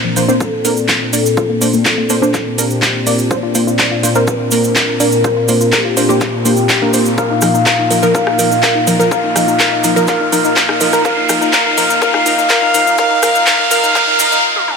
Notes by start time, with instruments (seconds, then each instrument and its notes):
Already playing: analog synth pad A#2 A#3 C4 D4 F4, analog synth lead C5, riser
0.04 synth arpeggio sound F3
0.16 synth arpeggio sound F3, synth pluck A#3 D4 C5, open hi-hat, cabasa
0.28 synth pluck A#3 D4 C5, synth arpeggio sound C4, cabasa
0.40 analog synth lead A4, kick, cabasa
0.65 synth pluck A#3 D4 A#4, open hi-hat, cabasa
0.77 cabasa
0.88 kick, clap, cabasa
1.13 synth pluck A#3 D4 D5, analog synth lead A4, open hi-hat, cabasa
1.26 cabasa
1.37 synth arpeggio sound F4, kick, cabasa
1.49 synth arpeggio sound A#3
1.61 synth pluck A#3 D4 C5, synth arpeggio sound A#3, open hi-hat, cabasa
1.74 synth arpeggio sound A#3, cabasa
1.85 synth arpeggio sound F4, analog synth lead A4, kick, clap, cabasa
1.98 synth arpeggio sound A#3
2.10 synth pluck A#3 D4 C5, synth arpeggio sound A#3, open hi-hat, cabasa
2.22 synth pluck A#3 D4 C5, synth arpeggio sound D4, cabasa
2.34 kick, clap, cabasa
2.58 synth pluck A#3 D4 A#4, analog synth lead G4, open hi-hat, cabasa
2.70 cabasa
2.82 kick, clap, cabasa
3.07 synth pluck A#3 D4 D5, open hi-hat, cabasa
3.19 cabasa
3.31 synth arpeggio sound C5, analog synth lead D5, kick, cabasa
3.43 synth arpeggio sound F4
3.55 synth pluck A#3 D4 C5, synth arpeggio sound F4, open hi-hat, cabasa
3.67 synth arpeggio sound F4, cabasa
3.79 synth arpeggio sound C5, kick, clap, cabasa
3.91 synth arpeggio sound F4
4.03 synth pluck A#3 D4 C5, synth arpeggio sound F4, open hi-hat, cabasa
4.15 synth pluck A#3 D4 C5, synth arpeggio sound A#4, cabasa
4.27 analog synth lead A#4, kick, cabasa
4.51 synth pluck A#3 D4 A#4, open hi-hat, cabasa
4.64 cabasa
4.76 kick, clap, cabasa
5.00 synth pluck A#3 D4 D5, analog synth lead A#4, open hi-hat, cabasa
5.12 cabasa
5.24 synth arpeggio sound C5, kick, cabasa
5.37 synth arpeggio sound F4
5.48 synth pluck A#3 D4 C5, synth arpeggio sound F4, open hi-hat, cabasa
5.61 synth arpeggio sound F4, cabasa
5.72 analog synth lead G4, synth arpeggio sound A#4, kick, clap, cabasa
5.85 synth arpeggio sound F4
5.97 synth pluck A#3 D4 C5, synth arpeggio sound F4, open hi-hat, cabasa
6.09 synth pluck A#3 D4 C5, synth arpeggio sound G4, cabasa
6.21 kick, clap, cabasa
6.45 synth pluck A#3 D4 C5, analog synth lead G4, open hi-hat, cabasa
6.57 cabasa
6.69 kick, clap, cabasa
6.82 synth pluck A#3 D4 A#4
6.94 synth pluck A#3 D4 C5, open hi-hat, cabasa
7.05 cabasa
7.18 analog synth pad D#4 A#4, synth arpeggio sound A#4, analog synth lead F5, kick, cabasa
7.30 synth arpeggio sound D#4
7.41 synth pluck F3 D#4 A#4, synth arpeggio sound D#4, cross-stick, open hi-hat, cabasa
7.54 synth arpeggio sound D#4, cabasa
7.66 synth arpeggio sound A#4, kick, clap, cabasa
7.78 synth arpeggio sound D#4
7.90 synth pluck F3 D#4 A#4, synth arpeggio sound D#4, open hi-hat, cabasa
8.03 synth pluck F3 D#4 A#4, synth arpeggio sound A#4, cabasa
8.15 synth arpeggio sound A#4, analog synth lead F5, kick, cabasa
8.27 synth arpeggio sound D#4, cross-stick
8.39 synth pluck F3 D#4 A#4, synth arpeggio sound D#4, open hi-hat, cabasa
8.51 synth arpeggio sound D#4, cabasa
8.63 synth arpeggio sound A#4, kick, clap, cabasa
8.75 synth arpeggio sound D#4
8.87 synth pluck F3 D#4 A#4, synth arpeggio sound D#4, open hi-hat, cabasa
8.99 synth pluck F3 D#4 A#4, synth arpeggio sound A#4, cabasa
9.11 synth arpeggio sound A#4, analog synth lead F5, kick, cabasa
9.24 synth arpeggio sound D#4
9.36 synth pluck F3 D#4 A#4, synth arpeggio sound D#4, cross-stick, open hi-hat, cabasa
9.48 synth arpeggio sound D#4, cabasa
9.59 synth arpeggio sound A#4, kick, clap, cabasa
9.72 synth arpeggio sound D#4
9.84 synth pluck F3 D#4 A#4, synth arpeggio sound D#4, open hi-hat, cabasa
9.96 synth pluck F3 D#4 A#4, synth arpeggio sound A#4, cabasa
10.07 synth arpeggio sound A#4, analog synth lead F5, kick, clap, cabasa
10.20 synth arpeggio sound D#4
10.32 synth pluck F3 D#4 A#4, synth arpeggio sound D#4, open hi-hat, cabasa
10.44 synth arpeggio sound D#4, cabasa
10.56 synth arpeggio sound A#4, kick, clap, cabasa
10.69 synth arpeggio sound D#4, cross-stick
10.81 synth pluck F3 D#4 A#4, synth arpeggio sound D#4, open hi-hat, cabasa
10.93 synth pluck F3 D#4 A#4, synth arpeggio sound A#4, cross-stick, cabasa
11.05 synth arpeggio sound A#4, analog synth lead F5, kick, cabasa
11.17 synth arpeggio sound D#4
11.29 synth pluck F3 D#4 A#4, synth arpeggio sound D#4, cross-stick, open hi-hat, cabasa
11.41 synth arpeggio sound D#4, cabasa
11.53 synth arpeggio sound A#4, analog synth lead F5, kick, clap, cabasa
11.66 synth arpeggio sound D#4
11.77 synth pluck F3 D#4 A#4, synth arpeggio sound D#4, open hi-hat, cabasa
11.90 synth arpeggio sound D#4, cabasa
12.02 synth arpeggio sound A#4, analog synth lead F5, kick, cabasa
12.14 synth arpeggio sound D#4, cross-stick
12.26 synth pluck F3 D#4 A#4, synth arpeggio sound D#4, open hi-hat, cabasa
12.38 synth arpeggio sound D#4, cabasa
12.49 synth arpeggio sound A#4, analog synth lead F5, kick, clap, cabasa
12.62 synth arpeggio sound D#4
12.74 synth pluck F3 D#4 A#4, synth arpeggio sound D#4, open hi-hat, cabasa
12.87 synth arpeggio sound D#4, cabasa
12.98 synth pluck F3 D#4 A#4, synth arpeggio sound A#4, analog synth lead F5, kick, cabasa
13.11 synth arpeggio sound D#4
13.23 synth pluck F3 D#4 A#4, synth arpeggio sound A#4, analog synth lead F5, cross-stick, open hi-hat, cabasa
13.35 synth arpeggio sound D#4, cabasa
13.46 synth pluck F3 D#4 A#4, synth arpeggio sound A#4, analog synth lead F5, kick, clap, cabasa
13.59 synth arpeggio sound D#4
13.71 synth pluck F3 D#4 A#4, synth arpeggio sound A#4, analog synth lead F5, open hi-hat, cabasa
13.83 synth arpeggio sound D#4, cabasa
13.95 synth pluck F3 D#4 A#4, synth arpeggio sound A#4, analog synth lead F5, kick, clap, cabasa
14.08 synth arpeggio sound D#4
14.19 synth pluck F3 D#4 A#4, synth arpeggio sound A#4, analog synth lead F5, open hi-hat, cabasa
14.32 synth arpeggio sound D#4, cabasa
14.56 high tom
14.68 mid tom